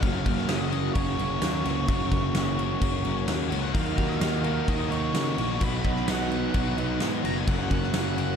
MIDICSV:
0, 0, Header, 1, 7, 480
1, 0, Start_track
1, 0, Key_signature, 6, "major"
1, 0, Tempo, 465477
1, 31, Time_signature, 4, 2, 24, 8
1, 8621, End_track
2, 0, Start_track
2, 0, Title_t, "Lead electric guitar"
2, 0, Program_c, 0, 29
2, 21, Note_on_c, 0, 77, 112
2, 500, Note_on_c, 0, 75, 93
2, 519, Note_off_c, 0, 77, 0
2, 961, Note_off_c, 0, 75, 0
2, 965, Note_on_c, 0, 73, 81
2, 3332, Note_off_c, 0, 73, 0
2, 3614, Note_on_c, 0, 80, 105
2, 3731, Note_off_c, 0, 80, 0
2, 3731, Note_on_c, 0, 78, 108
2, 3856, Note_off_c, 0, 78, 0
2, 3856, Note_on_c, 0, 77, 109
2, 4207, Note_off_c, 0, 77, 0
2, 4220, Note_on_c, 0, 77, 114
2, 4826, Note_on_c, 0, 75, 97
2, 4840, Note_off_c, 0, 77, 0
2, 5049, Note_off_c, 0, 75, 0
2, 5063, Note_on_c, 0, 73, 103
2, 5796, Note_on_c, 0, 71, 95
2, 5806, Note_off_c, 0, 73, 0
2, 6273, Note_on_c, 0, 78, 89
2, 6286, Note_off_c, 0, 71, 0
2, 7190, Note_off_c, 0, 78, 0
2, 7480, Note_on_c, 0, 82, 100
2, 7597, Note_off_c, 0, 82, 0
2, 7604, Note_on_c, 0, 80, 100
2, 7722, Note_off_c, 0, 80, 0
2, 7722, Note_on_c, 0, 78, 112
2, 8077, Note_off_c, 0, 78, 0
2, 8089, Note_on_c, 0, 78, 118
2, 8621, Note_off_c, 0, 78, 0
2, 8621, End_track
3, 0, Start_track
3, 0, Title_t, "Overdriven electric guitar"
3, 0, Program_c, 1, 29
3, 14, Note_on_c, 1, 42, 101
3, 22, Note_on_c, 1, 49, 107
3, 32, Note_on_c, 1, 54, 105
3, 39, Note_on_c, 1, 58, 117
3, 45, Note_on_c, 1, 61, 110
3, 49, Note_on_c, 1, 66, 120
3, 488, Note_off_c, 1, 54, 0
3, 493, Note_on_c, 1, 54, 88
3, 504, Note_off_c, 1, 58, 0
3, 508, Note_on_c, 1, 58, 85
3, 517, Note_off_c, 1, 61, 0
3, 521, Note_on_c, 1, 61, 81
3, 525, Note_off_c, 1, 66, 0
3, 529, Note_on_c, 1, 66, 99
3, 729, Note_off_c, 1, 66, 0
3, 733, Note_on_c, 1, 66, 82
3, 741, Note_off_c, 1, 61, 0
3, 745, Note_off_c, 1, 49, 0
3, 745, Note_on_c, 1, 61, 78
3, 753, Note_off_c, 1, 58, 0
3, 757, Note_on_c, 1, 58, 71
3, 763, Note_off_c, 1, 54, 0
3, 767, Note_on_c, 1, 54, 67
3, 976, Note_off_c, 1, 54, 0
3, 980, Note_on_c, 1, 54, 90
3, 990, Note_off_c, 1, 58, 0
3, 990, Note_off_c, 1, 61, 0
3, 994, Note_on_c, 1, 58, 97
3, 1002, Note_on_c, 1, 61, 89
3, 1011, Note_off_c, 1, 66, 0
3, 1015, Note_on_c, 1, 66, 94
3, 1218, Note_off_c, 1, 61, 0
3, 1218, Note_off_c, 1, 66, 0
3, 1222, Note_on_c, 1, 66, 79
3, 1230, Note_on_c, 1, 61, 67
3, 1243, Note_off_c, 1, 58, 0
3, 1247, Note_on_c, 1, 58, 66
3, 1250, Note_off_c, 1, 54, 0
3, 1254, Note_on_c, 1, 54, 56
3, 1687, Note_off_c, 1, 66, 0
3, 1691, Note_on_c, 1, 66, 80
3, 1694, Note_off_c, 1, 61, 0
3, 1707, Note_on_c, 1, 61, 69
3, 1711, Note_off_c, 1, 58, 0
3, 1716, Note_on_c, 1, 58, 65
3, 1722, Note_off_c, 1, 54, 0
3, 1726, Note_on_c, 1, 54, 64
3, 1921, Note_off_c, 1, 42, 0
3, 1925, Note_on_c, 1, 42, 106
3, 1931, Note_on_c, 1, 49, 104
3, 1935, Note_off_c, 1, 54, 0
3, 1939, Note_off_c, 1, 61, 0
3, 1939, Note_on_c, 1, 54, 117
3, 1943, Note_off_c, 1, 58, 0
3, 1947, Note_on_c, 1, 58, 107
3, 1952, Note_on_c, 1, 61, 104
3, 1954, Note_off_c, 1, 66, 0
3, 1959, Note_on_c, 1, 66, 116
3, 2404, Note_off_c, 1, 54, 0
3, 2408, Note_on_c, 1, 54, 78
3, 2417, Note_off_c, 1, 58, 0
3, 2420, Note_off_c, 1, 61, 0
3, 2421, Note_on_c, 1, 58, 86
3, 2433, Note_on_c, 1, 61, 94
3, 2439, Note_off_c, 1, 66, 0
3, 2444, Note_on_c, 1, 66, 94
3, 2640, Note_off_c, 1, 66, 0
3, 2644, Note_on_c, 1, 66, 79
3, 2648, Note_off_c, 1, 61, 0
3, 2655, Note_off_c, 1, 42, 0
3, 2658, Note_off_c, 1, 49, 0
3, 2660, Note_on_c, 1, 61, 72
3, 2664, Note_off_c, 1, 58, 0
3, 2668, Note_on_c, 1, 58, 73
3, 2673, Note_off_c, 1, 54, 0
3, 2677, Note_on_c, 1, 54, 62
3, 2878, Note_off_c, 1, 54, 0
3, 2882, Note_on_c, 1, 54, 80
3, 2886, Note_off_c, 1, 58, 0
3, 2895, Note_off_c, 1, 61, 0
3, 2898, Note_on_c, 1, 58, 81
3, 2908, Note_on_c, 1, 61, 99
3, 2914, Note_off_c, 1, 66, 0
3, 2918, Note_on_c, 1, 66, 82
3, 3123, Note_off_c, 1, 66, 0
3, 3127, Note_off_c, 1, 61, 0
3, 3127, Note_on_c, 1, 66, 74
3, 3136, Note_off_c, 1, 58, 0
3, 3140, Note_on_c, 1, 61, 76
3, 3148, Note_on_c, 1, 58, 71
3, 3157, Note_off_c, 1, 54, 0
3, 3161, Note_on_c, 1, 54, 59
3, 3603, Note_off_c, 1, 66, 0
3, 3607, Note_on_c, 1, 66, 78
3, 3610, Note_off_c, 1, 61, 0
3, 3619, Note_off_c, 1, 58, 0
3, 3622, Note_on_c, 1, 61, 67
3, 3631, Note_on_c, 1, 58, 62
3, 3637, Note_off_c, 1, 54, 0
3, 3642, Note_on_c, 1, 54, 59
3, 3838, Note_off_c, 1, 54, 0
3, 3842, Note_on_c, 1, 51, 105
3, 3845, Note_off_c, 1, 58, 0
3, 3849, Note_off_c, 1, 61, 0
3, 3857, Note_on_c, 1, 58, 106
3, 3867, Note_on_c, 1, 63, 96
3, 3871, Note_off_c, 1, 66, 0
3, 3876, Note_on_c, 1, 66, 114
3, 4316, Note_off_c, 1, 51, 0
3, 4329, Note_on_c, 1, 51, 90
3, 4333, Note_off_c, 1, 58, 0
3, 4345, Note_on_c, 1, 58, 80
3, 4353, Note_off_c, 1, 63, 0
3, 4357, Note_off_c, 1, 66, 0
3, 4357, Note_on_c, 1, 63, 90
3, 4361, Note_on_c, 1, 66, 99
3, 4561, Note_off_c, 1, 66, 0
3, 4565, Note_on_c, 1, 66, 82
3, 4578, Note_off_c, 1, 63, 0
3, 4582, Note_on_c, 1, 63, 73
3, 4588, Note_off_c, 1, 58, 0
3, 4600, Note_on_c, 1, 58, 67
3, 4805, Note_off_c, 1, 51, 0
3, 4815, Note_off_c, 1, 58, 0
3, 4817, Note_on_c, 1, 51, 87
3, 4827, Note_off_c, 1, 63, 0
3, 4827, Note_on_c, 1, 58, 82
3, 4839, Note_on_c, 1, 63, 94
3, 4846, Note_off_c, 1, 66, 0
3, 4850, Note_on_c, 1, 66, 88
3, 5046, Note_off_c, 1, 66, 0
3, 5050, Note_on_c, 1, 66, 64
3, 5054, Note_off_c, 1, 63, 0
3, 5067, Note_on_c, 1, 63, 67
3, 5072, Note_off_c, 1, 58, 0
3, 5085, Note_on_c, 1, 58, 57
3, 5301, Note_off_c, 1, 51, 0
3, 5528, Note_off_c, 1, 66, 0
3, 5532, Note_on_c, 1, 66, 78
3, 5540, Note_off_c, 1, 63, 0
3, 5553, Note_on_c, 1, 63, 70
3, 5556, Note_off_c, 1, 58, 0
3, 5568, Note_on_c, 1, 58, 56
3, 5772, Note_on_c, 1, 47, 110
3, 5775, Note_off_c, 1, 63, 0
3, 5782, Note_off_c, 1, 58, 0
3, 5786, Note_on_c, 1, 54, 101
3, 5791, Note_on_c, 1, 59, 105
3, 5800, Note_on_c, 1, 63, 105
3, 5803, Note_off_c, 1, 66, 0
3, 5807, Note_on_c, 1, 66, 105
3, 6255, Note_off_c, 1, 54, 0
3, 6259, Note_off_c, 1, 59, 0
3, 6259, Note_on_c, 1, 54, 75
3, 6272, Note_off_c, 1, 63, 0
3, 6272, Note_on_c, 1, 59, 85
3, 6284, Note_on_c, 1, 63, 94
3, 6288, Note_off_c, 1, 66, 0
3, 6292, Note_on_c, 1, 66, 94
3, 6492, Note_off_c, 1, 66, 0
3, 6496, Note_on_c, 1, 66, 78
3, 6500, Note_off_c, 1, 47, 0
3, 6504, Note_off_c, 1, 63, 0
3, 6516, Note_on_c, 1, 63, 77
3, 6520, Note_off_c, 1, 59, 0
3, 6533, Note_on_c, 1, 59, 69
3, 6734, Note_off_c, 1, 54, 0
3, 6738, Note_on_c, 1, 54, 93
3, 6743, Note_off_c, 1, 59, 0
3, 6750, Note_off_c, 1, 63, 0
3, 6755, Note_on_c, 1, 59, 90
3, 6763, Note_on_c, 1, 63, 96
3, 6769, Note_off_c, 1, 66, 0
3, 6773, Note_on_c, 1, 66, 100
3, 6978, Note_off_c, 1, 66, 0
3, 6982, Note_on_c, 1, 66, 75
3, 6984, Note_off_c, 1, 63, 0
3, 6996, Note_on_c, 1, 63, 72
3, 6999, Note_off_c, 1, 59, 0
3, 7011, Note_on_c, 1, 59, 64
3, 7448, Note_off_c, 1, 66, 0
3, 7453, Note_on_c, 1, 66, 77
3, 7463, Note_off_c, 1, 63, 0
3, 7475, Note_on_c, 1, 63, 68
3, 7476, Note_off_c, 1, 59, 0
3, 7488, Note_on_c, 1, 59, 64
3, 7692, Note_on_c, 1, 42, 89
3, 7698, Note_off_c, 1, 63, 0
3, 7700, Note_on_c, 1, 49, 98
3, 7704, Note_off_c, 1, 54, 0
3, 7704, Note_off_c, 1, 59, 0
3, 7708, Note_on_c, 1, 54, 107
3, 7711, Note_on_c, 1, 58, 100
3, 7721, Note_off_c, 1, 66, 0
3, 7721, Note_on_c, 1, 61, 107
3, 7725, Note_on_c, 1, 66, 102
3, 8165, Note_off_c, 1, 54, 0
3, 8169, Note_on_c, 1, 54, 79
3, 8177, Note_off_c, 1, 58, 0
3, 8182, Note_on_c, 1, 58, 86
3, 8194, Note_off_c, 1, 61, 0
3, 8198, Note_on_c, 1, 61, 87
3, 8202, Note_off_c, 1, 66, 0
3, 8206, Note_on_c, 1, 66, 103
3, 8412, Note_off_c, 1, 66, 0
3, 8416, Note_on_c, 1, 66, 84
3, 8426, Note_off_c, 1, 49, 0
3, 8426, Note_off_c, 1, 61, 0
3, 8430, Note_on_c, 1, 61, 78
3, 8437, Note_off_c, 1, 58, 0
3, 8441, Note_on_c, 1, 58, 79
3, 8445, Note_off_c, 1, 54, 0
3, 8449, Note_on_c, 1, 54, 66
3, 8621, Note_off_c, 1, 42, 0
3, 8621, Note_off_c, 1, 54, 0
3, 8621, Note_off_c, 1, 58, 0
3, 8621, Note_off_c, 1, 61, 0
3, 8621, Note_off_c, 1, 66, 0
3, 8621, End_track
4, 0, Start_track
4, 0, Title_t, "Twelve-string acoustic guitar"
4, 0, Program_c, 2, 25
4, 0, Note_on_c, 2, 66, 78
4, 259, Note_on_c, 2, 58, 67
4, 730, Note_off_c, 2, 58, 0
4, 973, Note_off_c, 2, 66, 0
4, 977, Note_on_c, 2, 68, 88
4, 1449, Note_off_c, 2, 68, 0
4, 1461, Note_on_c, 2, 68, 71
4, 2182, Note_on_c, 2, 58, 81
4, 2649, Note_off_c, 2, 58, 0
4, 2662, Note_off_c, 2, 68, 0
4, 2902, Note_on_c, 2, 68, 81
4, 3366, Note_off_c, 2, 68, 0
4, 3379, Note_on_c, 2, 68, 86
4, 3861, Note_off_c, 2, 68, 0
4, 3862, Note_on_c, 2, 54, 76
4, 4098, Note_on_c, 2, 58, 76
4, 4334, Note_off_c, 2, 54, 0
4, 4338, Note_on_c, 2, 54, 72
4, 4567, Note_off_c, 2, 58, 0
4, 6018, Note_on_c, 2, 59, 68
4, 6249, Note_off_c, 2, 59, 0
4, 7227, Note_on_c, 2, 66, 80
4, 7700, Note_off_c, 2, 54, 0
4, 7946, Note_on_c, 2, 58, 67
4, 8423, Note_off_c, 2, 58, 0
4, 8621, Note_off_c, 2, 66, 0
4, 8621, End_track
5, 0, Start_track
5, 0, Title_t, "Distorted electric guitar"
5, 0, Program_c, 3, 30
5, 6736, Note_on_c, 3, 47, 78
5, 7689, Note_off_c, 3, 47, 0
5, 8621, End_track
6, 0, Start_track
6, 0, Title_t, "Picked electric bass"
6, 0, Program_c, 4, 34
6, 30, Note_on_c, 4, 30, 95
6, 237, Note_off_c, 4, 30, 0
6, 269, Note_on_c, 4, 30, 107
6, 475, Note_off_c, 4, 30, 0
6, 505, Note_on_c, 4, 30, 90
6, 920, Note_off_c, 4, 30, 0
6, 985, Note_on_c, 4, 30, 99
6, 1192, Note_off_c, 4, 30, 0
6, 1223, Note_on_c, 4, 30, 97
6, 1431, Note_off_c, 4, 30, 0
6, 1466, Note_on_c, 4, 39, 102
6, 1673, Note_off_c, 4, 39, 0
6, 1706, Note_on_c, 4, 37, 100
6, 1913, Note_off_c, 4, 37, 0
6, 1939, Note_on_c, 4, 30, 98
6, 2148, Note_off_c, 4, 30, 0
6, 2181, Note_on_c, 4, 30, 93
6, 2390, Note_off_c, 4, 30, 0
6, 2425, Note_on_c, 4, 30, 97
6, 2838, Note_off_c, 4, 30, 0
6, 2901, Note_on_c, 4, 30, 99
6, 3109, Note_off_c, 4, 30, 0
6, 3143, Note_on_c, 4, 30, 91
6, 3351, Note_off_c, 4, 30, 0
6, 3382, Note_on_c, 4, 39, 100
6, 3590, Note_off_c, 4, 39, 0
6, 3619, Note_on_c, 4, 37, 85
6, 3828, Note_off_c, 4, 37, 0
6, 3863, Note_on_c, 4, 39, 99
6, 4070, Note_off_c, 4, 39, 0
6, 4107, Note_on_c, 4, 39, 96
6, 4312, Note_off_c, 4, 39, 0
6, 4335, Note_on_c, 4, 39, 94
6, 4752, Note_off_c, 4, 39, 0
6, 4826, Note_on_c, 4, 39, 94
6, 5032, Note_off_c, 4, 39, 0
6, 5052, Note_on_c, 4, 39, 88
6, 5264, Note_off_c, 4, 39, 0
6, 5300, Note_on_c, 4, 49, 99
6, 5509, Note_off_c, 4, 49, 0
6, 5550, Note_on_c, 4, 34, 86
6, 5754, Note_off_c, 4, 34, 0
6, 5791, Note_on_c, 4, 35, 87
6, 5995, Note_off_c, 4, 35, 0
6, 6031, Note_on_c, 4, 35, 100
6, 6236, Note_off_c, 4, 35, 0
6, 6265, Note_on_c, 4, 35, 93
6, 6680, Note_off_c, 4, 35, 0
6, 6748, Note_on_c, 4, 35, 102
6, 6954, Note_off_c, 4, 35, 0
6, 6995, Note_on_c, 4, 35, 102
6, 7199, Note_off_c, 4, 35, 0
6, 7226, Note_on_c, 4, 44, 109
6, 7434, Note_off_c, 4, 44, 0
6, 7471, Note_on_c, 4, 30, 85
6, 7677, Note_off_c, 4, 30, 0
6, 7708, Note_on_c, 4, 30, 103
6, 7915, Note_off_c, 4, 30, 0
6, 7948, Note_on_c, 4, 30, 102
6, 8156, Note_off_c, 4, 30, 0
6, 8184, Note_on_c, 4, 30, 93
6, 8601, Note_off_c, 4, 30, 0
6, 8621, End_track
7, 0, Start_track
7, 0, Title_t, "Drums"
7, 27, Note_on_c, 9, 49, 92
7, 28, Note_on_c, 9, 36, 119
7, 130, Note_off_c, 9, 49, 0
7, 131, Note_off_c, 9, 36, 0
7, 268, Note_on_c, 9, 36, 95
7, 269, Note_on_c, 9, 49, 80
7, 371, Note_off_c, 9, 36, 0
7, 372, Note_off_c, 9, 49, 0
7, 385, Note_on_c, 9, 38, 34
7, 489, Note_off_c, 9, 38, 0
7, 503, Note_on_c, 9, 38, 127
7, 503, Note_on_c, 9, 49, 104
7, 505, Note_on_c, 9, 54, 106
7, 606, Note_off_c, 9, 38, 0
7, 606, Note_off_c, 9, 49, 0
7, 608, Note_off_c, 9, 54, 0
7, 747, Note_on_c, 9, 49, 66
7, 850, Note_off_c, 9, 49, 0
7, 983, Note_on_c, 9, 49, 93
7, 986, Note_on_c, 9, 36, 110
7, 1086, Note_off_c, 9, 49, 0
7, 1089, Note_off_c, 9, 36, 0
7, 1231, Note_on_c, 9, 49, 70
7, 1334, Note_off_c, 9, 49, 0
7, 1462, Note_on_c, 9, 38, 112
7, 1462, Note_on_c, 9, 49, 88
7, 1466, Note_on_c, 9, 54, 105
7, 1566, Note_off_c, 9, 38, 0
7, 1566, Note_off_c, 9, 49, 0
7, 1569, Note_off_c, 9, 54, 0
7, 1707, Note_on_c, 9, 38, 39
7, 1707, Note_on_c, 9, 49, 78
7, 1810, Note_off_c, 9, 38, 0
7, 1810, Note_off_c, 9, 49, 0
7, 1944, Note_on_c, 9, 36, 122
7, 1944, Note_on_c, 9, 49, 89
7, 2047, Note_off_c, 9, 36, 0
7, 2047, Note_off_c, 9, 49, 0
7, 2181, Note_on_c, 9, 49, 72
7, 2183, Note_on_c, 9, 36, 93
7, 2285, Note_off_c, 9, 49, 0
7, 2286, Note_off_c, 9, 36, 0
7, 2421, Note_on_c, 9, 38, 114
7, 2421, Note_on_c, 9, 49, 84
7, 2423, Note_on_c, 9, 54, 96
7, 2524, Note_off_c, 9, 38, 0
7, 2524, Note_off_c, 9, 49, 0
7, 2527, Note_off_c, 9, 54, 0
7, 2670, Note_on_c, 9, 49, 65
7, 2773, Note_off_c, 9, 49, 0
7, 2903, Note_on_c, 9, 49, 95
7, 2905, Note_on_c, 9, 36, 103
7, 3007, Note_off_c, 9, 49, 0
7, 3008, Note_off_c, 9, 36, 0
7, 3142, Note_on_c, 9, 49, 72
7, 3245, Note_off_c, 9, 49, 0
7, 3382, Note_on_c, 9, 38, 120
7, 3382, Note_on_c, 9, 49, 90
7, 3385, Note_on_c, 9, 54, 101
7, 3485, Note_off_c, 9, 38, 0
7, 3485, Note_off_c, 9, 49, 0
7, 3488, Note_off_c, 9, 54, 0
7, 3629, Note_on_c, 9, 49, 81
7, 3733, Note_off_c, 9, 49, 0
7, 3864, Note_on_c, 9, 36, 125
7, 3864, Note_on_c, 9, 49, 100
7, 3967, Note_off_c, 9, 36, 0
7, 3967, Note_off_c, 9, 49, 0
7, 4103, Note_on_c, 9, 49, 82
7, 4104, Note_on_c, 9, 36, 92
7, 4206, Note_off_c, 9, 49, 0
7, 4207, Note_off_c, 9, 36, 0
7, 4230, Note_on_c, 9, 38, 30
7, 4334, Note_off_c, 9, 38, 0
7, 4344, Note_on_c, 9, 54, 112
7, 4346, Note_on_c, 9, 38, 127
7, 4346, Note_on_c, 9, 49, 100
7, 4447, Note_off_c, 9, 54, 0
7, 4449, Note_off_c, 9, 38, 0
7, 4449, Note_off_c, 9, 49, 0
7, 4581, Note_on_c, 9, 49, 70
7, 4684, Note_off_c, 9, 49, 0
7, 4827, Note_on_c, 9, 36, 108
7, 4830, Note_on_c, 9, 49, 92
7, 4930, Note_off_c, 9, 36, 0
7, 4933, Note_off_c, 9, 49, 0
7, 5071, Note_on_c, 9, 49, 74
7, 5174, Note_off_c, 9, 49, 0
7, 5305, Note_on_c, 9, 54, 107
7, 5307, Note_on_c, 9, 38, 112
7, 5307, Note_on_c, 9, 49, 94
7, 5408, Note_off_c, 9, 54, 0
7, 5410, Note_off_c, 9, 38, 0
7, 5410, Note_off_c, 9, 49, 0
7, 5550, Note_on_c, 9, 49, 79
7, 5653, Note_off_c, 9, 49, 0
7, 5783, Note_on_c, 9, 49, 96
7, 5788, Note_on_c, 9, 36, 115
7, 5886, Note_off_c, 9, 49, 0
7, 5891, Note_off_c, 9, 36, 0
7, 6027, Note_on_c, 9, 49, 67
7, 6028, Note_on_c, 9, 36, 87
7, 6130, Note_off_c, 9, 49, 0
7, 6131, Note_off_c, 9, 36, 0
7, 6144, Note_on_c, 9, 38, 32
7, 6248, Note_off_c, 9, 38, 0
7, 6269, Note_on_c, 9, 38, 127
7, 6269, Note_on_c, 9, 49, 98
7, 6270, Note_on_c, 9, 54, 97
7, 6372, Note_off_c, 9, 38, 0
7, 6372, Note_off_c, 9, 49, 0
7, 6373, Note_off_c, 9, 54, 0
7, 6511, Note_on_c, 9, 49, 66
7, 6615, Note_off_c, 9, 49, 0
7, 6745, Note_on_c, 9, 49, 82
7, 6749, Note_on_c, 9, 36, 113
7, 6848, Note_off_c, 9, 49, 0
7, 6853, Note_off_c, 9, 36, 0
7, 6991, Note_on_c, 9, 49, 65
7, 7094, Note_off_c, 9, 49, 0
7, 7223, Note_on_c, 9, 38, 108
7, 7223, Note_on_c, 9, 49, 78
7, 7233, Note_on_c, 9, 54, 101
7, 7326, Note_off_c, 9, 38, 0
7, 7326, Note_off_c, 9, 49, 0
7, 7336, Note_off_c, 9, 54, 0
7, 7473, Note_on_c, 9, 38, 39
7, 7473, Note_on_c, 9, 49, 84
7, 7576, Note_off_c, 9, 38, 0
7, 7576, Note_off_c, 9, 49, 0
7, 7709, Note_on_c, 9, 49, 92
7, 7710, Note_on_c, 9, 36, 123
7, 7812, Note_off_c, 9, 49, 0
7, 7813, Note_off_c, 9, 36, 0
7, 7950, Note_on_c, 9, 36, 98
7, 7951, Note_on_c, 9, 49, 78
7, 8053, Note_off_c, 9, 36, 0
7, 8054, Note_off_c, 9, 49, 0
7, 8071, Note_on_c, 9, 38, 33
7, 8174, Note_off_c, 9, 38, 0
7, 8185, Note_on_c, 9, 54, 104
7, 8186, Note_on_c, 9, 38, 127
7, 8186, Note_on_c, 9, 49, 99
7, 8288, Note_off_c, 9, 54, 0
7, 8289, Note_off_c, 9, 38, 0
7, 8289, Note_off_c, 9, 49, 0
7, 8435, Note_on_c, 9, 49, 79
7, 8538, Note_off_c, 9, 49, 0
7, 8621, End_track
0, 0, End_of_file